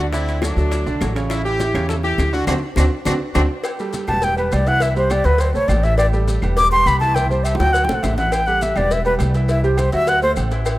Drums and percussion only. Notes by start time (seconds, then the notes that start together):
0.13 high bongo, high conga, high timbale, maracas
0.27 high conga, high timbale, maracas
0.42 high bongo, high conga, high timbale, claves, maracas
0.57 high bongo, high conga, maracas
0.71 high bongo, high timbale, maracas
0.87 high bongo, maracas
1.01 high bongo, low bongo, high conga, high timbale, low timbale, claves, maracas
1.16 high bongo, high timbale, maracas
1.30 high bongo, high timbale, claves, maracas
1.45 high conga, maracas
1.60 high bongo, high conga, high timbale, maracas
1.74 high bongo, low conga, high timbale, claves, maracas
1.89 high bongo, high conga, low conga, high timbale, maracas
2.03 high bongo, high conga, maracas
2.18 high bongo, low bongo, high conga, high timbale, claves, maracas
2.33 high bongo, maracas
2.47 low bongo, high conga, high timbale, claves, maracas
2.76 low bongo, high conga, high timbale, claves, maracas
3.05 low bongo, high conga, high timbale, claves, maracas
3.35 low bongo, high conga, high timbale, claves, maracas
3.64 cowbell, high conga, low agogo, claves, maracas
3.79 high conga, maracas
3.93 cowbell, high conga, low agogo, maracas
4.08 low conga, low agogo, claves, maracas
4.22 cowbell, high conga, low conga, maracas
4.38 high conga, low agogo, maracas
4.52 cowbell, high conga, low timbale, low agogo, claves, maracas
4.67 cowbell, maracas
4.80 cowbell, low agogo, maracas
4.96 maracas
5.10 cowbell, high conga, low agogo, claves, maracas
5.24 cowbell, maracas
5.38 cowbell, high conga, low agogo, maracas
5.54 high conga, maracas
5.68 cowbell, high conga, low timbale, low agogo, claves, maracas
5.83 cowbell, maracas
5.98 cowbell, low agogo, claves, maracas
6.13 maracas
6.28 cowbell, high conga, low agogo, maracas
6.42 low conga, low agogo, claves, maracas
6.57 cowbell, high conga, low conga, maracas
6.73 low agogo, maracas
6.86 cowbell, high conga, low agogo, claves, maracas
7.01 cowbell, high conga, maracas
7.16 cowbell, high conga, low agogo, maracas
7.26 high conga
7.31 maracas
7.45 cowbell, low agogo, claves, maracas
7.55 low conga
7.60 cowbell, high bongo, maracas
7.65 low conga
7.74 cowbell, low agogo, maracas
7.85 low conga
7.89 low bongo, maracas
8.03 cowbell, low bongo, low conga, low agogo, claves, maracas
8.13 low conga
8.18 cowbell, low bongo, maracas
8.23 low conga
8.32 cowbell, high conga, low agogo, claves, maracas
8.47 high conga, maracas
8.61 cowbell, high conga, low agogo, maracas
8.76 low conga, low agogo, claves, maracas
8.91 cowbell, high conga, low conga, maracas
9.05 high conga, low agogo, maracas
9.19 cowbell, high conga, low timbale, low agogo, claves, maracas
9.34 cowbell, maracas
9.48 cowbell, low agogo, maracas
9.64 maracas
9.77 cowbell, high conga, low agogo, claves, maracas
9.92 cowbell, maracas
10.07 cowbell, high conga, low agogo, maracas
10.22 maracas
10.36 cowbell, high conga, low agogo, claves, maracas
10.51 cowbell, high conga, maracas
10.66 cowbell, high conga, low agogo, claves, maracas